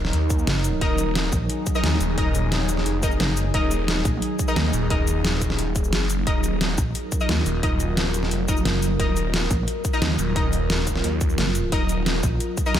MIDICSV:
0, 0, Header, 1, 6, 480
1, 0, Start_track
1, 0, Key_signature, -6, "minor"
1, 0, Tempo, 340909
1, 1146, Time_signature, 4, 2, 24, 8
1, 18017, End_track
2, 0, Start_track
2, 0, Title_t, "Synth stab"
2, 0, Program_c, 0, 62
2, 1145, Note_on_c, 0, 75, 98
2, 1146, Note_on_c, 0, 63, 86
2, 1146, Note_on_c, 0, 70, 77
2, 2437, Note_off_c, 0, 63, 0
2, 2437, Note_off_c, 0, 70, 0
2, 2437, Note_off_c, 0, 75, 0
2, 2466, Note_on_c, 0, 63, 87
2, 2466, Note_on_c, 0, 70, 79
2, 2466, Note_on_c, 0, 75, 99
2, 2565, Note_off_c, 0, 70, 0
2, 2566, Note_off_c, 0, 63, 0
2, 2566, Note_off_c, 0, 75, 0
2, 3066, Note_on_c, 0, 63, 74
2, 3066, Note_on_c, 0, 70, 68
2, 3066, Note_on_c, 0, 75, 84
2, 4237, Note_off_c, 0, 63, 0
2, 4237, Note_off_c, 0, 70, 0
2, 4237, Note_off_c, 0, 75, 0
2, 4266, Note_on_c, 0, 63, 77
2, 4266, Note_on_c, 0, 70, 72
2, 4266, Note_on_c, 0, 75, 86
2, 4365, Note_off_c, 0, 63, 0
2, 4366, Note_off_c, 0, 70, 0
2, 4366, Note_off_c, 0, 75, 0
2, 4986, Note_on_c, 0, 63, 85
2, 4986, Note_on_c, 0, 70, 79
2, 4986, Note_on_c, 0, 75, 94
2, 6277, Note_off_c, 0, 63, 0
2, 6277, Note_off_c, 0, 70, 0
2, 6277, Note_off_c, 0, 75, 0
2, 6306, Note_on_c, 0, 63, 91
2, 6306, Note_on_c, 0, 70, 81
2, 6307, Note_on_c, 0, 75, 100
2, 6406, Note_off_c, 0, 63, 0
2, 6406, Note_off_c, 0, 70, 0
2, 6406, Note_off_c, 0, 75, 0
2, 6906, Note_on_c, 0, 63, 75
2, 6906, Note_on_c, 0, 70, 70
2, 6906, Note_on_c, 0, 75, 85
2, 8077, Note_off_c, 0, 63, 0
2, 8077, Note_off_c, 0, 70, 0
2, 8077, Note_off_c, 0, 75, 0
2, 8825, Note_on_c, 0, 63, 87
2, 8825, Note_on_c, 0, 70, 79
2, 8825, Note_on_c, 0, 75, 94
2, 10117, Note_off_c, 0, 63, 0
2, 10117, Note_off_c, 0, 70, 0
2, 10117, Note_off_c, 0, 75, 0
2, 10146, Note_on_c, 0, 63, 90
2, 10146, Note_on_c, 0, 70, 80
2, 10146, Note_on_c, 0, 75, 97
2, 10246, Note_off_c, 0, 63, 0
2, 10246, Note_off_c, 0, 70, 0
2, 10246, Note_off_c, 0, 75, 0
2, 10745, Note_on_c, 0, 70, 68
2, 10746, Note_on_c, 0, 63, 75
2, 10746, Note_on_c, 0, 75, 84
2, 11917, Note_off_c, 0, 63, 0
2, 11917, Note_off_c, 0, 70, 0
2, 11917, Note_off_c, 0, 75, 0
2, 11946, Note_on_c, 0, 70, 69
2, 11946, Note_on_c, 0, 75, 84
2, 11947, Note_on_c, 0, 63, 78
2, 12046, Note_off_c, 0, 63, 0
2, 12046, Note_off_c, 0, 70, 0
2, 12046, Note_off_c, 0, 75, 0
2, 12666, Note_on_c, 0, 63, 90
2, 12666, Note_on_c, 0, 70, 80
2, 12666, Note_on_c, 0, 75, 95
2, 13957, Note_off_c, 0, 63, 0
2, 13957, Note_off_c, 0, 70, 0
2, 13957, Note_off_c, 0, 75, 0
2, 13985, Note_on_c, 0, 63, 90
2, 13985, Note_on_c, 0, 70, 84
2, 13985, Note_on_c, 0, 75, 97
2, 14085, Note_off_c, 0, 63, 0
2, 14085, Note_off_c, 0, 70, 0
2, 14085, Note_off_c, 0, 75, 0
2, 14585, Note_on_c, 0, 63, 76
2, 14585, Note_on_c, 0, 70, 69
2, 14585, Note_on_c, 0, 75, 80
2, 15757, Note_off_c, 0, 63, 0
2, 15757, Note_off_c, 0, 70, 0
2, 15757, Note_off_c, 0, 75, 0
2, 16505, Note_on_c, 0, 63, 90
2, 16505, Note_on_c, 0, 70, 81
2, 16505, Note_on_c, 0, 75, 96
2, 17797, Note_off_c, 0, 63, 0
2, 17797, Note_off_c, 0, 70, 0
2, 17797, Note_off_c, 0, 75, 0
2, 17826, Note_on_c, 0, 63, 89
2, 17826, Note_on_c, 0, 70, 83
2, 17826, Note_on_c, 0, 75, 98
2, 17926, Note_off_c, 0, 63, 0
2, 17926, Note_off_c, 0, 70, 0
2, 17926, Note_off_c, 0, 75, 0
2, 18017, End_track
3, 0, Start_track
3, 0, Title_t, "Ambient pad"
3, 0, Program_c, 1, 92
3, 0, Note_on_c, 1, 54, 83
3, 0, Note_on_c, 1, 63, 74
3, 0, Note_on_c, 1, 70, 88
3, 1113, Note_off_c, 1, 70, 0
3, 1146, Note_on_c, 1, 68, 89
3, 8770, Note_off_c, 1, 63, 0
3, 8794, Note_off_c, 1, 68, 0
3, 8827, Note_on_c, 1, 65, 73
3, 8827, Note_on_c, 1, 70, 90
3, 16474, Note_off_c, 1, 70, 0
3, 16509, Note_on_c, 1, 75, 90
3, 18017, Note_off_c, 1, 54, 0
3, 18017, Note_off_c, 1, 65, 0
3, 18017, Note_off_c, 1, 75, 0
3, 18017, End_track
4, 0, Start_track
4, 0, Title_t, "Wobble bass"
4, 0, Program_c, 2, 39
4, 667, Note_on_c, 2, 30, 99
4, 1127, Note_off_c, 2, 30, 0
4, 1866, Note_on_c, 2, 34, 97
4, 2087, Note_off_c, 2, 34, 0
4, 2585, Note_on_c, 2, 39, 98
4, 2807, Note_off_c, 2, 39, 0
4, 4505, Note_on_c, 2, 30, 100
4, 4967, Note_off_c, 2, 30, 0
4, 5706, Note_on_c, 2, 34, 98
4, 5927, Note_off_c, 2, 34, 0
4, 6425, Note_on_c, 2, 39, 99
4, 6646, Note_off_c, 2, 39, 0
4, 9546, Note_on_c, 2, 34, 95
4, 9767, Note_off_c, 2, 34, 0
4, 10265, Note_on_c, 2, 39, 98
4, 10487, Note_off_c, 2, 39, 0
4, 12186, Note_on_c, 2, 30, 97
4, 12647, Note_off_c, 2, 30, 0
4, 13386, Note_on_c, 2, 34, 96
4, 13607, Note_off_c, 2, 34, 0
4, 14105, Note_on_c, 2, 39, 102
4, 14326, Note_off_c, 2, 39, 0
4, 16025, Note_on_c, 2, 30, 97
4, 16487, Note_off_c, 2, 30, 0
4, 17227, Note_on_c, 2, 34, 93
4, 17447, Note_off_c, 2, 34, 0
4, 17946, Note_on_c, 2, 39, 99
4, 18017, Note_off_c, 2, 39, 0
4, 18017, End_track
5, 0, Start_track
5, 0, Title_t, "Detuned saw bass"
5, 0, Program_c, 3, 39
5, 0, Note_on_c, 3, 27, 97
5, 167, Note_off_c, 3, 27, 0
5, 186, Note_on_c, 3, 39, 95
5, 647, Note_off_c, 3, 39, 0
5, 1147, Note_on_c, 3, 27, 98
5, 1847, Note_off_c, 3, 27, 0
5, 2826, Note_on_c, 3, 27, 99
5, 3287, Note_off_c, 3, 27, 0
5, 3306, Note_on_c, 3, 27, 98
5, 4007, Note_off_c, 3, 27, 0
5, 4026, Note_on_c, 3, 29, 97
5, 4487, Note_off_c, 3, 29, 0
5, 4987, Note_on_c, 3, 27, 98
5, 5687, Note_off_c, 3, 27, 0
5, 6666, Note_on_c, 3, 27, 100
5, 7127, Note_off_c, 3, 27, 0
5, 7146, Note_on_c, 3, 27, 97
5, 7847, Note_off_c, 3, 27, 0
5, 7866, Note_on_c, 3, 27, 94
5, 8327, Note_off_c, 3, 27, 0
5, 8346, Note_on_c, 3, 30, 100
5, 8807, Note_off_c, 3, 30, 0
5, 8826, Note_on_c, 3, 27, 100
5, 9527, Note_off_c, 3, 27, 0
5, 10505, Note_on_c, 3, 27, 100
5, 10966, Note_off_c, 3, 27, 0
5, 10986, Note_on_c, 3, 27, 100
5, 11687, Note_off_c, 3, 27, 0
5, 11706, Note_on_c, 3, 29, 99
5, 12167, Note_off_c, 3, 29, 0
5, 12667, Note_on_c, 3, 27, 99
5, 13367, Note_off_c, 3, 27, 0
5, 14346, Note_on_c, 3, 27, 98
5, 14807, Note_off_c, 3, 27, 0
5, 14826, Note_on_c, 3, 27, 99
5, 15527, Note_off_c, 3, 27, 0
5, 15546, Note_on_c, 3, 39, 98
5, 16007, Note_off_c, 3, 39, 0
5, 16506, Note_on_c, 3, 27, 97
5, 17207, Note_off_c, 3, 27, 0
5, 18017, End_track
6, 0, Start_track
6, 0, Title_t, "Drums"
6, 66, Note_on_c, 9, 38, 38
6, 186, Note_on_c, 9, 42, 89
6, 186, Note_on_c, 9, 69, 26
6, 207, Note_off_c, 9, 38, 0
6, 327, Note_off_c, 9, 42, 0
6, 327, Note_off_c, 9, 69, 0
6, 426, Note_on_c, 9, 42, 68
6, 426, Note_on_c, 9, 69, 56
6, 427, Note_on_c, 9, 36, 113
6, 546, Note_off_c, 9, 69, 0
6, 546, Note_on_c, 9, 69, 27
6, 567, Note_off_c, 9, 36, 0
6, 567, Note_off_c, 9, 42, 0
6, 666, Note_on_c, 9, 38, 120
6, 666, Note_on_c, 9, 42, 92
6, 687, Note_off_c, 9, 69, 0
6, 807, Note_off_c, 9, 38, 0
6, 807, Note_off_c, 9, 42, 0
6, 907, Note_on_c, 9, 42, 65
6, 907, Note_on_c, 9, 69, 57
6, 1048, Note_off_c, 9, 42, 0
6, 1048, Note_off_c, 9, 69, 0
6, 1146, Note_on_c, 9, 42, 90
6, 1147, Note_on_c, 9, 36, 118
6, 1287, Note_off_c, 9, 36, 0
6, 1287, Note_off_c, 9, 42, 0
6, 1385, Note_on_c, 9, 42, 65
6, 1385, Note_on_c, 9, 69, 57
6, 1526, Note_off_c, 9, 42, 0
6, 1526, Note_off_c, 9, 69, 0
6, 1626, Note_on_c, 9, 38, 116
6, 1626, Note_on_c, 9, 42, 88
6, 1766, Note_off_c, 9, 38, 0
6, 1766, Note_off_c, 9, 42, 0
6, 1866, Note_on_c, 9, 36, 107
6, 1866, Note_on_c, 9, 42, 66
6, 1866, Note_on_c, 9, 69, 59
6, 2006, Note_off_c, 9, 42, 0
6, 2006, Note_off_c, 9, 69, 0
6, 2007, Note_off_c, 9, 36, 0
6, 2106, Note_on_c, 9, 42, 90
6, 2106, Note_on_c, 9, 69, 26
6, 2246, Note_off_c, 9, 42, 0
6, 2246, Note_off_c, 9, 69, 0
6, 2345, Note_on_c, 9, 42, 63
6, 2345, Note_on_c, 9, 69, 58
6, 2346, Note_on_c, 9, 36, 102
6, 2465, Note_off_c, 9, 69, 0
6, 2465, Note_on_c, 9, 69, 28
6, 2486, Note_off_c, 9, 42, 0
6, 2487, Note_off_c, 9, 36, 0
6, 2585, Note_on_c, 9, 38, 119
6, 2585, Note_on_c, 9, 42, 90
6, 2606, Note_off_c, 9, 69, 0
6, 2726, Note_off_c, 9, 38, 0
6, 2726, Note_off_c, 9, 42, 0
6, 2825, Note_on_c, 9, 42, 64
6, 2825, Note_on_c, 9, 69, 58
6, 2966, Note_off_c, 9, 42, 0
6, 2966, Note_off_c, 9, 69, 0
6, 3065, Note_on_c, 9, 42, 91
6, 3066, Note_on_c, 9, 36, 116
6, 3206, Note_off_c, 9, 42, 0
6, 3207, Note_off_c, 9, 36, 0
6, 3306, Note_on_c, 9, 42, 65
6, 3306, Note_on_c, 9, 69, 62
6, 3447, Note_off_c, 9, 42, 0
6, 3447, Note_off_c, 9, 69, 0
6, 3545, Note_on_c, 9, 38, 110
6, 3545, Note_on_c, 9, 42, 85
6, 3686, Note_off_c, 9, 38, 0
6, 3686, Note_off_c, 9, 42, 0
6, 3785, Note_on_c, 9, 42, 61
6, 3785, Note_on_c, 9, 69, 59
6, 3906, Note_on_c, 9, 38, 35
6, 3926, Note_off_c, 9, 42, 0
6, 3926, Note_off_c, 9, 69, 0
6, 4026, Note_on_c, 9, 42, 89
6, 4026, Note_on_c, 9, 69, 28
6, 4046, Note_off_c, 9, 38, 0
6, 4167, Note_off_c, 9, 42, 0
6, 4167, Note_off_c, 9, 69, 0
6, 4265, Note_on_c, 9, 42, 66
6, 4265, Note_on_c, 9, 69, 61
6, 4266, Note_on_c, 9, 36, 102
6, 4386, Note_off_c, 9, 69, 0
6, 4386, Note_on_c, 9, 69, 28
6, 4406, Note_off_c, 9, 42, 0
6, 4407, Note_off_c, 9, 36, 0
6, 4506, Note_on_c, 9, 38, 115
6, 4506, Note_on_c, 9, 42, 90
6, 4526, Note_off_c, 9, 69, 0
6, 4646, Note_off_c, 9, 38, 0
6, 4646, Note_off_c, 9, 42, 0
6, 4746, Note_on_c, 9, 42, 63
6, 4746, Note_on_c, 9, 69, 61
6, 4886, Note_off_c, 9, 42, 0
6, 4886, Note_off_c, 9, 69, 0
6, 4985, Note_on_c, 9, 42, 98
6, 4986, Note_on_c, 9, 36, 113
6, 5126, Note_off_c, 9, 42, 0
6, 5127, Note_off_c, 9, 36, 0
6, 5226, Note_on_c, 9, 42, 68
6, 5226, Note_on_c, 9, 69, 65
6, 5367, Note_off_c, 9, 42, 0
6, 5367, Note_off_c, 9, 69, 0
6, 5466, Note_on_c, 9, 38, 112
6, 5466, Note_on_c, 9, 42, 92
6, 5607, Note_off_c, 9, 38, 0
6, 5607, Note_off_c, 9, 42, 0
6, 5706, Note_on_c, 9, 36, 101
6, 5706, Note_on_c, 9, 42, 65
6, 5706, Note_on_c, 9, 69, 62
6, 5847, Note_off_c, 9, 36, 0
6, 5847, Note_off_c, 9, 42, 0
6, 5847, Note_off_c, 9, 69, 0
6, 5945, Note_on_c, 9, 42, 89
6, 5945, Note_on_c, 9, 69, 28
6, 6086, Note_off_c, 9, 42, 0
6, 6086, Note_off_c, 9, 69, 0
6, 6185, Note_on_c, 9, 42, 66
6, 6185, Note_on_c, 9, 69, 60
6, 6186, Note_on_c, 9, 36, 101
6, 6306, Note_off_c, 9, 69, 0
6, 6306, Note_on_c, 9, 69, 30
6, 6326, Note_off_c, 9, 42, 0
6, 6327, Note_off_c, 9, 36, 0
6, 6425, Note_on_c, 9, 38, 116
6, 6425, Note_on_c, 9, 42, 91
6, 6446, Note_off_c, 9, 69, 0
6, 6566, Note_off_c, 9, 38, 0
6, 6566, Note_off_c, 9, 42, 0
6, 6666, Note_on_c, 9, 42, 65
6, 6666, Note_on_c, 9, 69, 62
6, 6807, Note_off_c, 9, 42, 0
6, 6807, Note_off_c, 9, 69, 0
6, 6905, Note_on_c, 9, 42, 96
6, 6906, Note_on_c, 9, 36, 117
6, 7046, Note_off_c, 9, 42, 0
6, 7047, Note_off_c, 9, 36, 0
6, 7145, Note_on_c, 9, 42, 67
6, 7145, Note_on_c, 9, 69, 64
6, 7286, Note_off_c, 9, 42, 0
6, 7286, Note_off_c, 9, 69, 0
6, 7386, Note_on_c, 9, 38, 118
6, 7386, Note_on_c, 9, 42, 95
6, 7526, Note_off_c, 9, 38, 0
6, 7526, Note_off_c, 9, 42, 0
6, 7625, Note_on_c, 9, 42, 66
6, 7625, Note_on_c, 9, 69, 62
6, 7626, Note_on_c, 9, 36, 60
6, 7746, Note_on_c, 9, 38, 37
6, 7766, Note_off_c, 9, 42, 0
6, 7766, Note_off_c, 9, 69, 0
6, 7767, Note_off_c, 9, 36, 0
6, 7865, Note_on_c, 9, 42, 97
6, 7865, Note_on_c, 9, 69, 29
6, 7887, Note_off_c, 9, 38, 0
6, 8006, Note_off_c, 9, 42, 0
6, 8006, Note_off_c, 9, 69, 0
6, 8105, Note_on_c, 9, 42, 70
6, 8105, Note_on_c, 9, 69, 64
6, 8106, Note_on_c, 9, 36, 101
6, 8225, Note_off_c, 9, 69, 0
6, 8225, Note_on_c, 9, 69, 30
6, 8246, Note_off_c, 9, 42, 0
6, 8247, Note_off_c, 9, 36, 0
6, 8345, Note_on_c, 9, 38, 113
6, 8345, Note_on_c, 9, 42, 92
6, 8366, Note_off_c, 9, 69, 0
6, 8485, Note_off_c, 9, 38, 0
6, 8485, Note_off_c, 9, 42, 0
6, 8585, Note_on_c, 9, 42, 67
6, 8585, Note_on_c, 9, 69, 62
6, 8726, Note_off_c, 9, 42, 0
6, 8726, Note_off_c, 9, 69, 0
6, 8826, Note_on_c, 9, 36, 118
6, 8826, Note_on_c, 9, 42, 101
6, 8966, Note_off_c, 9, 42, 0
6, 8967, Note_off_c, 9, 36, 0
6, 9065, Note_on_c, 9, 42, 70
6, 9065, Note_on_c, 9, 69, 64
6, 9206, Note_off_c, 9, 42, 0
6, 9206, Note_off_c, 9, 69, 0
6, 9306, Note_on_c, 9, 38, 116
6, 9306, Note_on_c, 9, 42, 96
6, 9446, Note_off_c, 9, 38, 0
6, 9446, Note_off_c, 9, 42, 0
6, 9545, Note_on_c, 9, 42, 71
6, 9545, Note_on_c, 9, 69, 64
6, 9546, Note_on_c, 9, 36, 108
6, 9686, Note_off_c, 9, 42, 0
6, 9686, Note_off_c, 9, 69, 0
6, 9687, Note_off_c, 9, 36, 0
6, 9786, Note_on_c, 9, 42, 95
6, 9786, Note_on_c, 9, 69, 29
6, 9927, Note_off_c, 9, 42, 0
6, 9927, Note_off_c, 9, 69, 0
6, 10025, Note_on_c, 9, 42, 68
6, 10025, Note_on_c, 9, 69, 63
6, 10026, Note_on_c, 9, 36, 104
6, 10145, Note_off_c, 9, 69, 0
6, 10145, Note_on_c, 9, 69, 30
6, 10166, Note_off_c, 9, 42, 0
6, 10167, Note_off_c, 9, 36, 0
6, 10265, Note_on_c, 9, 38, 123
6, 10265, Note_on_c, 9, 42, 98
6, 10286, Note_off_c, 9, 69, 0
6, 10406, Note_off_c, 9, 38, 0
6, 10406, Note_off_c, 9, 42, 0
6, 10505, Note_on_c, 9, 42, 70
6, 10505, Note_on_c, 9, 69, 61
6, 10646, Note_off_c, 9, 42, 0
6, 10646, Note_off_c, 9, 69, 0
6, 10745, Note_on_c, 9, 42, 103
6, 10746, Note_on_c, 9, 36, 121
6, 10886, Note_off_c, 9, 42, 0
6, 10887, Note_off_c, 9, 36, 0
6, 10985, Note_on_c, 9, 42, 70
6, 10985, Note_on_c, 9, 69, 61
6, 11125, Note_off_c, 9, 42, 0
6, 11125, Note_off_c, 9, 69, 0
6, 11225, Note_on_c, 9, 38, 121
6, 11225, Note_on_c, 9, 42, 95
6, 11366, Note_off_c, 9, 38, 0
6, 11366, Note_off_c, 9, 42, 0
6, 11465, Note_on_c, 9, 42, 69
6, 11465, Note_on_c, 9, 69, 62
6, 11585, Note_on_c, 9, 38, 38
6, 11606, Note_off_c, 9, 42, 0
6, 11606, Note_off_c, 9, 69, 0
6, 11706, Note_on_c, 9, 42, 98
6, 11706, Note_on_c, 9, 69, 28
6, 11726, Note_off_c, 9, 38, 0
6, 11846, Note_off_c, 9, 42, 0
6, 11846, Note_off_c, 9, 69, 0
6, 11945, Note_on_c, 9, 42, 69
6, 11945, Note_on_c, 9, 69, 60
6, 11946, Note_on_c, 9, 36, 110
6, 12065, Note_off_c, 9, 69, 0
6, 12065, Note_on_c, 9, 69, 29
6, 12086, Note_off_c, 9, 42, 0
6, 12087, Note_off_c, 9, 36, 0
6, 12186, Note_on_c, 9, 38, 125
6, 12186, Note_on_c, 9, 42, 101
6, 12206, Note_off_c, 9, 69, 0
6, 12326, Note_off_c, 9, 38, 0
6, 12326, Note_off_c, 9, 42, 0
6, 12426, Note_on_c, 9, 42, 70
6, 12426, Note_on_c, 9, 69, 60
6, 12567, Note_off_c, 9, 42, 0
6, 12567, Note_off_c, 9, 69, 0
6, 12666, Note_on_c, 9, 36, 122
6, 12666, Note_on_c, 9, 42, 99
6, 12807, Note_off_c, 9, 36, 0
6, 12807, Note_off_c, 9, 42, 0
6, 12906, Note_on_c, 9, 42, 69
6, 12906, Note_on_c, 9, 69, 58
6, 13047, Note_off_c, 9, 42, 0
6, 13047, Note_off_c, 9, 69, 0
6, 13146, Note_on_c, 9, 38, 125
6, 13146, Note_on_c, 9, 42, 96
6, 13287, Note_off_c, 9, 38, 0
6, 13287, Note_off_c, 9, 42, 0
6, 13386, Note_on_c, 9, 36, 112
6, 13386, Note_on_c, 9, 42, 68
6, 13386, Note_on_c, 9, 69, 58
6, 13527, Note_off_c, 9, 36, 0
6, 13527, Note_off_c, 9, 42, 0
6, 13527, Note_off_c, 9, 69, 0
6, 13626, Note_on_c, 9, 42, 98
6, 13626, Note_on_c, 9, 69, 27
6, 13767, Note_off_c, 9, 42, 0
6, 13767, Note_off_c, 9, 69, 0
6, 13866, Note_on_c, 9, 36, 108
6, 13866, Note_on_c, 9, 42, 68
6, 13866, Note_on_c, 9, 69, 58
6, 13986, Note_off_c, 9, 69, 0
6, 13986, Note_on_c, 9, 69, 27
6, 14007, Note_off_c, 9, 36, 0
6, 14007, Note_off_c, 9, 42, 0
6, 14106, Note_on_c, 9, 38, 127
6, 14106, Note_on_c, 9, 42, 97
6, 14126, Note_off_c, 9, 69, 0
6, 14247, Note_off_c, 9, 38, 0
6, 14247, Note_off_c, 9, 42, 0
6, 14345, Note_on_c, 9, 42, 69
6, 14345, Note_on_c, 9, 69, 58
6, 14486, Note_off_c, 9, 42, 0
6, 14486, Note_off_c, 9, 69, 0
6, 14585, Note_on_c, 9, 36, 126
6, 14586, Note_on_c, 9, 42, 95
6, 14726, Note_off_c, 9, 36, 0
6, 14727, Note_off_c, 9, 42, 0
6, 14825, Note_on_c, 9, 42, 68
6, 14825, Note_on_c, 9, 69, 58
6, 14966, Note_off_c, 9, 42, 0
6, 14966, Note_off_c, 9, 69, 0
6, 15064, Note_on_c, 9, 38, 122
6, 15064, Note_on_c, 9, 42, 89
6, 15205, Note_off_c, 9, 38, 0
6, 15205, Note_off_c, 9, 42, 0
6, 15306, Note_on_c, 9, 36, 65
6, 15306, Note_on_c, 9, 42, 66
6, 15306, Note_on_c, 9, 69, 57
6, 15425, Note_on_c, 9, 38, 39
6, 15446, Note_off_c, 9, 36, 0
6, 15446, Note_off_c, 9, 42, 0
6, 15446, Note_off_c, 9, 69, 0
6, 15545, Note_on_c, 9, 42, 92
6, 15545, Note_on_c, 9, 69, 26
6, 15566, Note_off_c, 9, 38, 0
6, 15686, Note_off_c, 9, 42, 0
6, 15686, Note_off_c, 9, 69, 0
6, 15785, Note_on_c, 9, 42, 66
6, 15785, Note_on_c, 9, 69, 60
6, 15786, Note_on_c, 9, 36, 107
6, 15905, Note_off_c, 9, 69, 0
6, 15905, Note_on_c, 9, 69, 27
6, 15926, Note_off_c, 9, 36, 0
6, 15926, Note_off_c, 9, 42, 0
6, 16024, Note_on_c, 9, 38, 126
6, 16024, Note_on_c, 9, 42, 91
6, 16046, Note_off_c, 9, 69, 0
6, 16165, Note_off_c, 9, 38, 0
6, 16165, Note_off_c, 9, 42, 0
6, 16264, Note_on_c, 9, 42, 66
6, 16264, Note_on_c, 9, 69, 57
6, 16405, Note_off_c, 9, 42, 0
6, 16405, Note_off_c, 9, 69, 0
6, 16504, Note_on_c, 9, 42, 91
6, 16506, Note_on_c, 9, 36, 122
6, 16645, Note_off_c, 9, 42, 0
6, 16647, Note_off_c, 9, 36, 0
6, 16745, Note_on_c, 9, 42, 63
6, 16745, Note_on_c, 9, 69, 59
6, 16886, Note_off_c, 9, 42, 0
6, 16886, Note_off_c, 9, 69, 0
6, 16985, Note_on_c, 9, 38, 118
6, 16985, Note_on_c, 9, 42, 90
6, 17125, Note_off_c, 9, 38, 0
6, 17125, Note_off_c, 9, 42, 0
6, 17225, Note_on_c, 9, 42, 64
6, 17225, Note_on_c, 9, 69, 56
6, 17226, Note_on_c, 9, 36, 109
6, 17366, Note_off_c, 9, 42, 0
6, 17366, Note_off_c, 9, 69, 0
6, 17367, Note_off_c, 9, 36, 0
6, 17465, Note_on_c, 9, 42, 90
6, 17465, Note_on_c, 9, 69, 27
6, 17606, Note_off_c, 9, 42, 0
6, 17606, Note_off_c, 9, 69, 0
6, 17706, Note_on_c, 9, 36, 105
6, 17706, Note_on_c, 9, 42, 64
6, 17706, Note_on_c, 9, 69, 59
6, 17826, Note_off_c, 9, 69, 0
6, 17826, Note_on_c, 9, 69, 28
6, 17847, Note_off_c, 9, 36, 0
6, 17847, Note_off_c, 9, 42, 0
6, 17945, Note_on_c, 9, 38, 121
6, 17945, Note_on_c, 9, 42, 90
6, 17967, Note_off_c, 9, 69, 0
6, 18017, Note_off_c, 9, 38, 0
6, 18017, Note_off_c, 9, 42, 0
6, 18017, End_track
0, 0, End_of_file